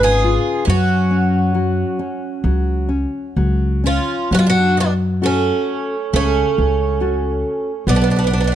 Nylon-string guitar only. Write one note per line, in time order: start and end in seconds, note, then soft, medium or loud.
0.00 0.63 C#3 medium
0.00 0.22 G#3 medium
0.24 0.66 F4 medium
0.67 1.53 F#3 medium
1.11 1.53 C#4 medium
1.55 1.97 F#3 soft
1.99 2.42 C#4 soft
2.44 2.88 F#3 soft
2.89 3.35 C#4 soft
3.36 3.83 F#3 soft
3.84 4.29 C#4 soft
4.31 5.20 F#3 medium
5.22 5.94 C#4 soft
5.22 5.95 F#4 soft
5.22 5.95 A4 soft
6.13 6.98 C#3 medium
7.00 7.69 C#4 soft
7.00 7.70 F#4 soft
7.00 7.70 A4 soft
7.87 8.55 B3 medium